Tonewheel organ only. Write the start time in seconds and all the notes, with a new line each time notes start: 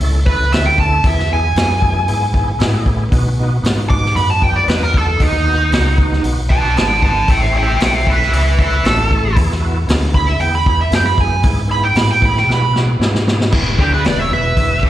0.02 C#4 E4 A4
0.28 C#4 E4 A4
0.53 C#4 E4 A4
0.80 C#4 E4 A4
1.05 B3 E4 G#4
1.30 B3 E4 G#4
1.57 B3 E4 G#4
1.80 B3 E4 G#4
2.08 B3 E4 G#4
2.32 B3 E4 G#4
2.59 B3 E4 G#4
2.85 B3 E4 G#4
3.10 B3 D#4 F#4
3.39 B3 D#4 F#4
3.62 B3 D#4 F#4
3.88 B3 D#4 F#4
4.13 B3 D#4 F#4
4.39 B3 D#4 F#4
4.64 B3 D#4 F#4
4.90 B3 D#4 F#4
5.17 B3 D#4 F#4
5.44 B3 D#4 F#4
5.70 B3 D#4 F#4
5.96 B3 D#4 F#4
6.21 B3 D#4 F#4
6.49 B3 D#4 F#4
6.75 B3 D#4 G#4
7.01 B3 D#4 F#4
7.27 C#4 E4 A4
7.52 C#4 E4 G#4
7.80 C#4 E4 A4
8.05 C#4 E4 A4
8.30 C#4 E4 G#4
8.58 C#4 E4 A4
8.83 C#4 E4 A4
9.10 C#4 E4 A4
9.35 B3 E4 G#4
9.60 B3 E4 F#4
9.87 B3 E4 G#4
10.13 B3 E4 G#4
10.40 B3 E4 G#4
10.66 B3 E4 G#4
10.90 B3 E4 G#4
11.18 B3 E4 G#4
11.43 B3 E4 G#4
11.68 B3 E4 G#4
11.95 B3 E4 G#4
12.20 B3 E4 G#4
12.46 B3 E4 F#4
12.72 B3 E4 F#4
12.99 B3 E4 G#4
13.25 B3 E4 G#4
13.51 B3 E4 G#4
13.76 B3 E4 G#4
14.04 B3 E4 G#4
14.30 B3 E4 G#4
14.54 B3 E4 G#4
14.80 G3 D4 G4